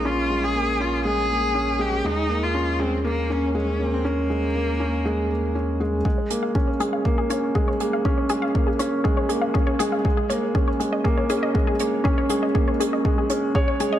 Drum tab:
HH |--------|--------|--------|-x-x-x-x|
BD |--------|--------|--------|o-o-o-o-|

HH |-x-x-x-x|-x-x-x-x|-x-x-x-x|
BD |o-o-o-o-|o-o-o-o-|o-o-o-o-|